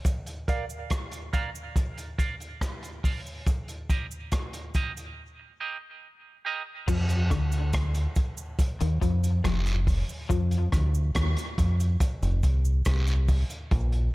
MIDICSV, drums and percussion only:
0, 0, Header, 1, 2, 480
1, 0, Start_track
1, 0, Tempo, 853485
1, 29, Time_signature, 4, 2, 24, 8
1, 7957, End_track
2, 0, Start_track
2, 0, Title_t, "Drums"
2, 26, Note_on_c, 9, 42, 78
2, 28, Note_on_c, 9, 36, 100
2, 32, Note_on_c, 9, 69, 70
2, 82, Note_off_c, 9, 42, 0
2, 84, Note_off_c, 9, 36, 0
2, 88, Note_off_c, 9, 69, 0
2, 149, Note_on_c, 9, 42, 46
2, 152, Note_on_c, 9, 69, 51
2, 205, Note_off_c, 9, 42, 0
2, 208, Note_off_c, 9, 69, 0
2, 271, Note_on_c, 9, 36, 96
2, 272, Note_on_c, 9, 42, 59
2, 273, Note_on_c, 9, 69, 54
2, 327, Note_off_c, 9, 36, 0
2, 328, Note_off_c, 9, 42, 0
2, 329, Note_off_c, 9, 69, 0
2, 391, Note_on_c, 9, 69, 68
2, 448, Note_off_c, 9, 69, 0
2, 507, Note_on_c, 9, 42, 84
2, 510, Note_on_c, 9, 36, 113
2, 513, Note_on_c, 9, 37, 115
2, 515, Note_on_c, 9, 69, 68
2, 563, Note_off_c, 9, 42, 0
2, 567, Note_off_c, 9, 36, 0
2, 569, Note_off_c, 9, 37, 0
2, 571, Note_off_c, 9, 69, 0
2, 627, Note_on_c, 9, 42, 57
2, 635, Note_on_c, 9, 69, 52
2, 683, Note_off_c, 9, 42, 0
2, 691, Note_off_c, 9, 69, 0
2, 750, Note_on_c, 9, 36, 88
2, 750, Note_on_c, 9, 42, 58
2, 751, Note_on_c, 9, 69, 52
2, 806, Note_off_c, 9, 42, 0
2, 807, Note_off_c, 9, 36, 0
2, 807, Note_off_c, 9, 69, 0
2, 873, Note_on_c, 9, 69, 66
2, 929, Note_off_c, 9, 69, 0
2, 988, Note_on_c, 9, 36, 100
2, 989, Note_on_c, 9, 42, 74
2, 992, Note_on_c, 9, 69, 61
2, 1045, Note_off_c, 9, 36, 0
2, 1045, Note_off_c, 9, 42, 0
2, 1048, Note_off_c, 9, 69, 0
2, 1111, Note_on_c, 9, 42, 51
2, 1115, Note_on_c, 9, 69, 47
2, 1167, Note_off_c, 9, 42, 0
2, 1171, Note_off_c, 9, 69, 0
2, 1229, Note_on_c, 9, 36, 78
2, 1231, Note_on_c, 9, 42, 60
2, 1235, Note_on_c, 9, 69, 53
2, 1286, Note_off_c, 9, 36, 0
2, 1288, Note_off_c, 9, 42, 0
2, 1291, Note_off_c, 9, 69, 0
2, 1351, Note_on_c, 9, 42, 30
2, 1358, Note_on_c, 9, 69, 62
2, 1407, Note_off_c, 9, 42, 0
2, 1414, Note_off_c, 9, 69, 0
2, 1469, Note_on_c, 9, 36, 96
2, 1471, Note_on_c, 9, 37, 108
2, 1472, Note_on_c, 9, 42, 85
2, 1475, Note_on_c, 9, 69, 74
2, 1525, Note_off_c, 9, 36, 0
2, 1527, Note_off_c, 9, 37, 0
2, 1528, Note_off_c, 9, 42, 0
2, 1532, Note_off_c, 9, 69, 0
2, 1590, Note_on_c, 9, 42, 44
2, 1599, Note_on_c, 9, 69, 44
2, 1646, Note_off_c, 9, 42, 0
2, 1655, Note_off_c, 9, 69, 0
2, 1710, Note_on_c, 9, 36, 86
2, 1711, Note_on_c, 9, 46, 62
2, 1715, Note_on_c, 9, 69, 51
2, 1766, Note_off_c, 9, 36, 0
2, 1768, Note_off_c, 9, 46, 0
2, 1771, Note_off_c, 9, 69, 0
2, 1835, Note_on_c, 9, 69, 50
2, 1891, Note_off_c, 9, 69, 0
2, 1948, Note_on_c, 9, 42, 78
2, 1949, Note_on_c, 9, 36, 106
2, 1952, Note_on_c, 9, 69, 65
2, 2004, Note_off_c, 9, 42, 0
2, 2006, Note_off_c, 9, 36, 0
2, 2008, Note_off_c, 9, 69, 0
2, 2070, Note_on_c, 9, 42, 45
2, 2074, Note_on_c, 9, 69, 51
2, 2127, Note_off_c, 9, 42, 0
2, 2130, Note_off_c, 9, 69, 0
2, 2191, Note_on_c, 9, 36, 86
2, 2192, Note_on_c, 9, 69, 54
2, 2193, Note_on_c, 9, 42, 61
2, 2247, Note_off_c, 9, 36, 0
2, 2248, Note_off_c, 9, 69, 0
2, 2250, Note_off_c, 9, 42, 0
2, 2312, Note_on_c, 9, 69, 65
2, 2369, Note_off_c, 9, 69, 0
2, 2428, Note_on_c, 9, 42, 83
2, 2429, Note_on_c, 9, 69, 68
2, 2431, Note_on_c, 9, 36, 107
2, 2434, Note_on_c, 9, 37, 103
2, 2484, Note_off_c, 9, 42, 0
2, 2486, Note_off_c, 9, 69, 0
2, 2487, Note_off_c, 9, 36, 0
2, 2491, Note_off_c, 9, 37, 0
2, 2549, Note_on_c, 9, 42, 61
2, 2552, Note_on_c, 9, 69, 49
2, 2605, Note_off_c, 9, 42, 0
2, 2608, Note_off_c, 9, 69, 0
2, 2667, Note_on_c, 9, 69, 47
2, 2670, Note_on_c, 9, 36, 88
2, 2670, Note_on_c, 9, 42, 64
2, 2723, Note_off_c, 9, 69, 0
2, 2726, Note_off_c, 9, 42, 0
2, 2727, Note_off_c, 9, 36, 0
2, 2795, Note_on_c, 9, 69, 63
2, 2796, Note_on_c, 9, 42, 33
2, 2851, Note_off_c, 9, 69, 0
2, 2852, Note_off_c, 9, 42, 0
2, 3868, Note_on_c, 9, 49, 101
2, 3869, Note_on_c, 9, 36, 122
2, 3872, Note_on_c, 9, 69, 77
2, 3924, Note_off_c, 9, 49, 0
2, 3925, Note_off_c, 9, 36, 0
2, 3928, Note_off_c, 9, 69, 0
2, 3986, Note_on_c, 9, 42, 48
2, 3992, Note_on_c, 9, 69, 56
2, 4042, Note_off_c, 9, 42, 0
2, 4049, Note_off_c, 9, 69, 0
2, 4111, Note_on_c, 9, 36, 91
2, 4112, Note_on_c, 9, 37, 70
2, 4112, Note_on_c, 9, 69, 60
2, 4113, Note_on_c, 9, 42, 70
2, 4167, Note_off_c, 9, 36, 0
2, 4168, Note_off_c, 9, 37, 0
2, 4168, Note_off_c, 9, 69, 0
2, 4170, Note_off_c, 9, 42, 0
2, 4229, Note_on_c, 9, 69, 70
2, 4238, Note_on_c, 9, 42, 35
2, 4285, Note_off_c, 9, 69, 0
2, 4294, Note_off_c, 9, 42, 0
2, 4347, Note_on_c, 9, 69, 67
2, 4349, Note_on_c, 9, 42, 87
2, 4351, Note_on_c, 9, 36, 120
2, 4355, Note_on_c, 9, 37, 116
2, 4403, Note_off_c, 9, 69, 0
2, 4405, Note_off_c, 9, 42, 0
2, 4407, Note_off_c, 9, 36, 0
2, 4412, Note_off_c, 9, 37, 0
2, 4469, Note_on_c, 9, 42, 70
2, 4469, Note_on_c, 9, 69, 52
2, 4525, Note_off_c, 9, 42, 0
2, 4525, Note_off_c, 9, 69, 0
2, 4586, Note_on_c, 9, 69, 56
2, 4591, Note_on_c, 9, 36, 98
2, 4591, Note_on_c, 9, 42, 69
2, 4642, Note_off_c, 9, 69, 0
2, 4647, Note_off_c, 9, 42, 0
2, 4648, Note_off_c, 9, 36, 0
2, 4709, Note_on_c, 9, 69, 75
2, 4765, Note_off_c, 9, 69, 0
2, 4829, Note_on_c, 9, 36, 119
2, 4830, Note_on_c, 9, 42, 88
2, 4831, Note_on_c, 9, 69, 73
2, 4886, Note_off_c, 9, 36, 0
2, 4886, Note_off_c, 9, 42, 0
2, 4887, Note_off_c, 9, 69, 0
2, 4951, Note_on_c, 9, 42, 58
2, 4955, Note_on_c, 9, 69, 46
2, 5008, Note_off_c, 9, 42, 0
2, 5011, Note_off_c, 9, 69, 0
2, 5071, Note_on_c, 9, 36, 87
2, 5073, Note_on_c, 9, 42, 62
2, 5075, Note_on_c, 9, 69, 55
2, 5127, Note_off_c, 9, 36, 0
2, 5129, Note_off_c, 9, 42, 0
2, 5131, Note_off_c, 9, 69, 0
2, 5194, Note_on_c, 9, 42, 36
2, 5195, Note_on_c, 9, 69, 74
2, 5251, Note_off_c, 9, 42, 0
2, 5251, Note_off_c, 9, 69, 0
2, 5311, Note_on_c, 9, 36, 107
2, 5313, Note_on_c, 9, 69, 66
2, 5313, Note_on_c, 9, 74, 77
2, 5314, Note_on_c, 9, 37, 121
2, 5315, Note_on_c, 9, 42, 87
2, 5368, Note_off_c, 9, 36, 0
2, 5369, Note_off_c, 9, 69, 0
2, 5369, Note_off_c, 9, 74, 0
2, 5370, Note_off_c, 9, 37, 0
2, 5371, Note_off_c, 9, 42, 0
2, 5431, Note_on_c, 9, 42, 54
2, 5436, Note_on_c, 9, 69, 46
2, 5487, Note_off_c, 9, 42, 0
2, 5492, Note_off_c, 9, 69, 0
2, 5551, Note_on_c, 9, 36, 95
2, 5552, Note_on_c, 9, 46, 63
2, 5557, Note_on_c, 9, 69, 50
2, 5608, Note_off_c, 9, 36, 0
2, 5609, Note_off_c, 9, 46, 0
2, 5613, Note_off_c, 9, 69, 0
2, 5675, Note_on_c, 9, 69, 57
2, 5731, Note_off_c, 9, 69, 0
2, 5791, Note_on_c, 9, 36, 124
2, 5792, Note_on_c, 9, 42, 90
2, 5795, Note_on_c, 9, 69, 81
2, 5848, Note_off_c, 9, 36, 0
2, 5848, Note_off_c, 9, 42, 0
2, 5852, Note_off_c, 9, 69, 0
2, 5912, Note_on_c, 9, 42, 48
2, 5916, Note_on_c, 9, 69, 54
2, 5968, Note_off_c, 9, 42, 0
2, 5973, Note_off_c, 9, 69, 0
2, 6031, Note_on_c, 9, 37, 67
2, 6032, Note_on_c, 9, 42, 65
2, 6033, Note_on_c, 9, 36, 103
2, 6036, Note_on_c, 9, 69, 53
2, 6087, Note_off_c, 9, 37, 0
2, 6088, Note_off_c, 9, 42, 0
2, 6089, Note_off_c, 9, 36, 0
2, 6092, Note_off_c, 9, 69, 0
2, 6155, Note_on_c, 9, 69, 70
2, 6212, Note_off_c, 9, 69, 0
2, 6270, Note_on_c, 9, 42, 90
2, 6273, Note_on_c, 9, 36, 106
2, 6276, Note_on_c, 9, 37, 120
2, 6277, Note_on_c, 9, 69, 64
2, 6326, Note_off_c, 9, 42, 0
2, 6329, Note_off_c, 9, 36, 0
2, 6332, Note_off_c, 9, 37, 0
2, 6333, Note_off_c, 9, 69, 0
2, 6392, Note_on_c, 9, 42, 60
2, 6401, Note_on_c, 9, 69, 56
2, 6448, Note_off_c, 9, 42, 0
2, 6457, Note_off_c, 9, 69, 0
2, 6512, Note_on_c, 9, 42, 71
2, 6513, Note_on_c, 9, 36, 91
2, 6517, Note_on_c, 9, 69, 51
2, 6569, Note_off_c, 9, 36, 0
2, 6569, Note_off_c, 9, 42, 0
2, 6573, Note_off_c, 9, 69, 0
2, 6636, Note_on_c, 9, 69, 70
2, 6637, Note_on_c, 9, 42, 36
2, 6693, Note_off_c, 9, 42, 0
2, 6693, Note_off_c, 9, 69, 0
2, 6750, Note_on_c, 9, 42, 94
2, 6751, Note_on_c, 9, 36, 109
2, 6754, Note_on_c, 9, 69, 74
2, 6806, Note_off_c, 9, 42, 0
2, 6807, Note_off_c, 9, 36, 0
2, 6810, Note_off_c, 9, 69, 0
2, 6876, Note_on_c, 9, 42, 49
2, 6876, Note_on_c, 9, 69, 52
2, 6932, Note_off_c, 9, 69, 0
2, 6933, Note_off_c, 9, 42, 0
2, 6990, Note_on_c, 9, 69, 52
2, 6993, Note_on_c, 9, 36, 83
2, 6995, Note_on_c, 9, 42, 65
2, 7047, Note_off_c, 9, 69, 0
2, 7049, Note_off_c, 9, 36, 0
2, 7052, Note_off_c, 9, 42, 0
2, 7113, Note_on_c, 9, 69, 75
2, 7169, Note_off_c, 9, 69, 0
2, 7228, Note_on_c, 9, 69, 80
2, 7228, Note_on_c, 9, 74, 72
2, 7233, Note_on_c, 9, 36, 118
2, 7233, Note_on_c, 9, 37, 120
2, 7234, Note_on_c, 9, 42, 104
2, 7284, Note_off_c, 9, 69, 0
2, 7284, Note_off_c, 9, 74, 0
2, 7289, Note_off_c, 9, 36, 0
2, 7289, Note_off_c, 9, 37, 0
2, 7290, Note_off_c, 9, 42, 0
2, 7351, Note_on_c, 9, 69, 47
2, 7353, Note_on_c, 9, 42, 50
2, 7407, Note_off_c, 9, 69, 0
2, 7409, Note_off_c, 9, 42, 0
2, 7470, Note_on_c, 9, 69, 55
2, 7471, Note_on_c, 9, 46, 68
2, 7472, Note_on_c, 9, 36, 91
2, 7526, Note_off_c, 9, 69, 0
2, 7528, Note_off_c, 9, 36, 0
2, 7528, Note_off_c, 9, 46, 0
2, 7591, Note_on_c, 9, 42, 37
2, 7593, Note_on_c, 9, 69, 62
2, 7647, Note_off_c, 9, 42, 0
2, 7649, Note_off_c, 9, 69, 0
2, 7711, Note_on_c, 9, 42, 76
2, 7713, Note_on_c, 9, 36, 127
2, 7768, Note_off_c, 9, 42, 0
2, 7769, Note_off_c, 9, 36, 0
2, 7830, Note_on_c, 9, 42, 47
2, 7887, Note_off_c, 9, 42, 0
2, 7957, End_track
0, 0, End_of_file